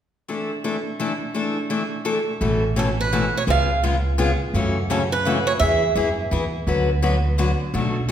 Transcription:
0.28 steel-string acoustic guitar E3 A3 D4 E4 A4
0.64 steel-string acoustic guitar E3 A3 D4 E4 A4
0.99 steel-string acoustic guitar E3 A3 D4 E4 A4
1.34 steel-string acoustic guitar E3 A3 D4 E4 A4
1.70 steel-string acoustic guitar E3 A3 D4 E4 A4
2.05 steel-string acoustic guitar E3 A3 D4 E4 A4
2.41 upright bass A1, steel-string acoustic guitar B2 E3 A3 C#4 A4
2.76 steel-string acoustic guitar B2 E3 A3 C#4 A4
3.01 steel-string acoustic guitar B4
3.12 steel-string acoustic guitar B2 E3 A3 C#4 A4
3.37 steel-string acoustic guitar C#5
3.47 upright bass C#2, steel-string acoustic guitar C#3 G#3 B3 F4 G#4 F5
3.83 steel-string acoustic guitar C#3 G#3 B3 F4 G#4
4.18 steel-string acoustic guitar C#3 G#3 B3 F4 G#4
4.54 upright bass F#2, steel-string acoustic guitar C#3 E3 A3 C#4 F#4
4.90 steel-string acoustic guitar C#3 E3 A3 C#4 F#4 A4
5.12 steel-string acoustic guitar B4
5.25 steel-string acoustic guitar C#3 E3 A3 C#4 F#4
5.47 steel-string acoustic guitar C#5
5.60 upright bass E2, steel-string acoustic guitar E3 B3 E4 G#4 E5
5.95 upright bass F#2, steel-string acoustic guitar E3 B3 E4 G#4
6.31 upright bass E2, steel-string acoustic guitar E3 B3 E4 G#4
6.67 upright bass D2, steel-string acoustic guitar D3 F#3 B3 F#4 B4
7.02 steel-string acoustic guitar D3 F#3 B3 F#4 B4
7.38 steel-string acoustic guitar D3 F#3 B3 F#4 B4
7.74 upright bass B1, steel-string acoustic guitar B2 F#3 A3 D4 F#4

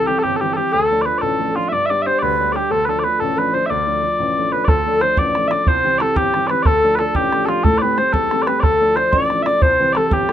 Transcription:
Already playing: flute A4
0.07 upright piano E3 G3 C4, bagpipes G4
0.19 bagpipes A4
0.23 upright piano G1, bagpipes G4, flute G4
0.36 bagpipes A4
0.40 upright piano E3 G3 C4, flute G4, bagpipes G4
0.53 upright piano E3, flute G4, bagpipes G4 A4
0.57 upright piano G3 C4
0.72 upright piano D2, flute A4, bagpipes A4
0.91 upright piano F3 A3 D4
1.02 bagpipes B4 D5
1.06 upright piano F3 A3 D4, flute B4
1.18 bagpipes A4 D5
1.22 upright piano A1, flute A4
1.39 upright piano F3 A3 D4
1.56 upright piano F3 A3 D4, bagpipes F4
1.69 upright piano G2, flute D5, bagpipes D5 E5
1.86 upright piano G3, bagpipes E5
1.90 upright piano B3 D4, bagpipes D5
2.02 upright piano G3, flute C5, bagpipes E5
2.06 upright piano B3 D4, bagpipes C5
2.19 upright piano D2, flute B4, bagpipes B4 D5
2.39 upright piano G3 B3 D4
2.52 upright piano G3 B3 D4, flute G4, bagpipes G4 D5
2.70 upright piano D2, flute A4, bagpipes A4
2.83 flute B4, bagpipes B4
2.88 upright piano F3 A3 D4, flute A4, bagpipes A4
2.99 bagpipes D5
3.04 upright piano F3 A3 D4, bagpipes B4
3.19 upright piano A1, flute A4, bagpipes A4
3.36 upright piano F3 A3 D4, flute B4, bagpipes B4
3.53 upright piano F3 A3 D4, flute C5, bagpipes C5
3.66 flute D5, bagpipes E5
3.70 upright piano D2, bagpipes D5
3.87 upright piano F3 A3 D4
4.02 upright piano F3 A3 D4
4.20 upright piano A1
4.37 upright piano F3 A3 D4
4.52 upright piano F3 A3 D4, bagpipes B4, flute B4
4.64 upright piano D2, bagpipes A4 D5, bodhran
4.69 flute A4
4.86 upright piano F3 A3 D4
5.01 upright piano F3 A3 D4, flute C5, bagpipes C5, bodhran
5.17 upright piano A1, flute D5, bagpipes D5, bodhran
5.35 upright piano F3 A3 D4, bodhran
5.48 upright piano F3 A3 D4, bagpipes D5 E5, bodhran
5.67 upright piano C2, flute C5, bagpipes C5, bodhran
5.84 upright piano E3 G3 C4
5.98 upright piano E3 G3 C4, bagpipes A4 D5, bodhran
6.16 upright piano G1, bagpipes G4, flute G4, bodhran
6.34 upright piano E3 G3 C4, bodhran
6.47 upright piano E3 G3 C4, flute B4, bagpipes B4 D5, bodhran
6.62 upright piano D2, flute A4, bagpipes A4 D5, bodhran
6.83 upright piano F3 A3 D4
6.96 upright piano F3, flute A4, bagpipes A4 B4, bodhran
7.00 upright piano A3 D4
7.15 upright piano A1, flute G4, bagpipes G4, bodhran
7.32 upright piano F3 A3 D4, bodhran
7.45 upright piano F3 A3 D4, bagpipes F4 A4, bodhran
7.64 upright piano A2, bagpipes A4, flute A4, bodhran
7.78 upright piano G3 A3, bagpipes B4 D5, flute B4
7.83 upright piano C4
7.98 upright piano G3 A3 C4, bagpipes C5, flute C5, bodhran
8.13 upright piano E2, bagpipes A4, flute A4, bodhran
8.31 upright piano G3 A3 C4, bodhran
8.42 bagpipes D5
8.47 upright piano G3 A3 C4, bagpipes B4, flute B4, bodhran
8.60 upright piano D2, bagpipes A4 D5, flute A4, bodhran
8.80 upright piano F3 A3 D4
8.96 upright piano F3 A3 D4, bagpipes C5, flute C5, bodhran
9.12 upright piano A1, bagpipes D5, flute D5, bodhran
9.30 upright piano F3 A3 D4, bodhran
9.42 upright piano F3 A3, flute D5, bagpipes E5, bodhran
9.46 upright piano D4, bagpipes D5
9.62 upright piano C2, flute C5, bagpipes C5, bodhran
9.79 upright piano E3 G3 C4, flute B4
9.93 upright piano E3 G3 C4, flute A4, bagpipes D5, bodhran
9.97 bagpipes A4
10.11 upright piano G1, flute G4, bagpipes G4, bodhran
10.28 upright piano E3 G3 C4, flute A4, bodhran

